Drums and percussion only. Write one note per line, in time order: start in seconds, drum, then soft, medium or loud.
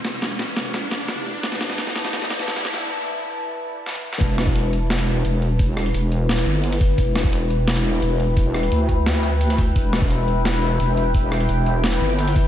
0.04 snare medium
0.04 closed hi-hat medium
0.22 snare medium
0.22 closed hi-hat soft
0.39 snare medium
0.39 closed hi-hat medium
0.56 snare medium
0.74 snare medium
0.74 closed hi-hat medium
0.91 snare medium
0.91 closed hi-hat soft
1.08 snare medium
1.08 closed hi-hat medium
1.43 snare loud
1.43 closed hi-hat medium
1.52 snare medium
1.61 snare medium
1.61 closed hi-hat soft
1.70 snare medium
1.78 snare medium
1.78 closed hi-hat medium
1.87 snare medium
1.96 snare loud
2.04 snare medium
2.13 snare medium
2.13 closed hi-hat medium
2.22 snare medium
2.30 snare loud
2.30 closed hi-hat soft
2.39 snare medium
2.48 snare loud
2.48 closed hi-hat medium
2.56 snare medium
2.65 snare loud
2.74 snare medium
3.86 snare medium
3.95 high tom medium
4.13 snare medium
4.21 kick loud
4.21 closed hi-hat medium
4.38 cross-stick medium
4.38 snare medium
4.47 kick loud
4.56 closed hi-hat medium
4.73 closed hi-hat soft
4.90 snare loud
4.99 closed hi-hat medium
4.99 open hi-hat soft
5.25 closed hi-hat medium
5.42 closed hi-hat soft
5.59 kick loud
5.59 closed hi-hat medium
5.77 cross-stick medium
5.86 open hi-hat soft
5.94 closed hi-hat medium
6.12 closed hi-hat soft
6.29 snare loud
6.29 closed hi-hat medium
6.64 closed hi-hat medium
6.73 open hi-hat medium
6.81 kick loud
6.81 open hi-hat medium
6.98 kick loud
6.98 closed hi-hat medium
7.16 cross-stick medium
7.16 snare medium
7.24 kick loud
7.33 closed hi-hat medium
7.50 closed hi-hat soft
7.68 snare loud
7.68 closed hi-hat medium
7.76 open hi-hat soft
8.02 closed hi-hat medium
8.20 closed hi-hat soft
8.37 kick loud
8.37 closed hi-hat medium
8.54 cross-stick medium
8.63 open hi-hat soft
8.72 closed hi-hat medium
8.89 kick medium
8.89 closed hi-hat soft
9.06 snare loud
9.06 closed hi-hat medium
9.24 closed hi-hat soft
9.41 closed hi-hat medium
9.50 open hi-hat medium
9.58 kick loud
9.58 open hi-hat medium
9.76 kick loud
9.76 closed hi-hat medium
9.93 cross-stick medium
9.93 snare medium
10.02 kick loud
10.10 closed hi-hat medium
10.28 closed hi-hat soft
10.45 snare loud
10.45 closed hi-hat medium
10.54 open hi-hat soft
10.80 closed hi-hat medium
10.97 closed hi-hat soft
11.14 kick loud
11.14 closed hi-hat medium
11.32 cross-stick medium
11.40 open hi-hat soft
11.49 closed hi-hat medium
11.66 closed hi-hat soft
11.84 snare loud
11.84 closed hi-hat medium
12.19 closed hi-hat medium
12.28 open hi-hat medium
12.36 kick loud
12.36 open hi-hat medium